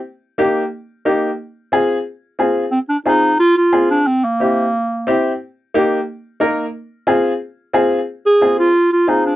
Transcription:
<<
  \new Staff \with { instrumentName = "Upright piano" } { \time 4/4 \key f \dorian \tempo 4 = 179 r4 <bes ees' g'>8 r4. <bes ees' g'>8 r8 | r4 <c' f' aes'>8 r4. <c' f' aes'>8 r8 | r4 <c' f' aes'>8 r4. <c' f' aes'>8 r8 | r4 <c' e' g'>8 r4. <c' e' g'>8 r8 |
r4 <bes ees' g'>8 r4. <bes ees' bes'>8 r8 | r4 <c' f' aes'>8 r4. <c' f' aes'>8 r8 | r4 <c' f' aes'>8 r4. <c' f' aes'>8 r8 | }
  \new Staff \with { instrumentName = "Clarinet" } { \time 4/4 \key f \dorian r1 | r1 | c'8 d'8 ees'4 f'8 f'4 d'8 | c'8 bes2. r8 |
r1 | r1 | r8 aes'4 f'4 f'8 ees'8 d'8 | }
>>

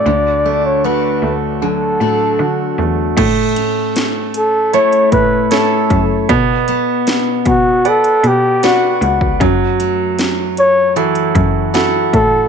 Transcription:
<<
  \new Staff \with { instrumentName = "Flugelhorn" } { \time 4/4 \key a \mixolydian \tempo 4 = 77 d''8. cis''16 b'8. r16 a'4. r8 | r4. a'8 cis''8 b'8 a'8. r16 | r4. fis'8 a'8 g'8 fis'8. r16 | r4. cis''8 r4. a'8 | }
  \new Staff \with { instrumentName = "Grand piano" } { \time 4/4 \key a \mixolydian d8 a8 fis'8 a8 d8 a8 fis'8 a8 | a2 <e' a' cis''>4 <e' a' cis''>4 | b2 <b' d'' fis''>4 <fis' b' d''>4 | fis2 <e' fis' a'>4 <e' fis' a'>4 | }
  \new Staff \with { instrumentName = "Steel-string acoustic guitar" } { \time 4/4 \key a \mixolydian d8 d'8 <a d' fis'>4 fis8 <a d' fis'>4. | a,8 cis'4. a4 a'4 | b,8 b2~ b8 fis'4 | fis,8 a4. e4 fis'4 | }
  \new Staff \with { instrumentName = "Cello" } { \clef bass \time 4/4 \key a \mixolydian d,4. d,4 a,8 d8 e,8 | a,2~ a,16 r16 a,4 fis,8 | b,4. b,4 b,4 cis,8 | fis,2~ fis,16 r16 fis,4 a,8 | }
  \new DrumStaff \with { instrumentName = "Drums" } \drummode { \time 4/4 r4 r4 r4 r4 | <cymc hh bd>8 hh8 <hh sn>8 hh8 hh16 hh16 <hh bd>8 <hh sn>8 <hh bd>8 | <hh bd>8 hh8 <hh sn>8 <hh bd>8 hh16 hh16 hh8 <hh sn>8 hh16 bd16 | <hh bd>8 hh8 <hh sn>8 hh8 hh16 hh16 <hh bd>8 <hh sn>8 <hh bd>8 | }
>>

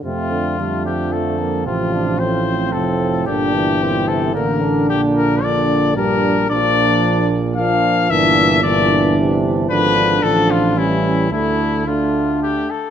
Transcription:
<<
  \new Staff \with { instrumentName = "Trumpet" } { \time 3/4 \key f \major \tempo 4 = 112 f'4. g'8 a'4 | f'4 c''4 a'4 | g'4. a'8 bes'4 | g'8 bes'8 d''4 bes'4 |
\key d \minor d''4. r8 f''4 | e''4 d''4 r4 | b'4 a'8 f'8 e'4 | e'4 f'4 g'8 a'8 | }
  \new Staff \with { instrumentName = "Flugelhorn" } { \time 3/4 \key f \major c'4 a4 a8 bes8 | c'8 d'8 c'8 c'4. | d'4 c'4 bes8 d'8~ | d'4 d'4 d'4 |
\key d \minor d'2 d'4 | d'4 d'2 | d'4 d'4 cis'4 | d'4 d'4. r8 | }
  \new Staff \with { instrumentName = "French horn" } { \clef bass \time 3/4 \key f \major a4 g8 f4. | f2 f4 | d8 e4. d4~ | d4 d4 g4 |
\key d \minor f2 f4 | e4 e2 | eis4 f4 g4 | a4 a4. r8 | }
  \new Staff \with { instrumentName = "Trombone" } { \clef bass \time 3/4 \key f \major c8 d8 d2 | c4 a,4 a,4 | bes,4 bes,8 c8 d4 | bes,4 bes,4 g,4 |
\key d \minor bes,2 bes,4 | bes,4 bes,4 c4 | d4 d4 e4 | d4 d4. r8 | }
  \new Staff \with { instrumentName = "Tuba" } { \clef bass \time 3/4 \key f \major f,2. | a,,2 f,,4 | g,,2 a,,4 | bes,,2. |
\key d \minor bes,,2. | g,,2. | gis,,4 a,,2 | d,2~ d,8 r8 | }
>>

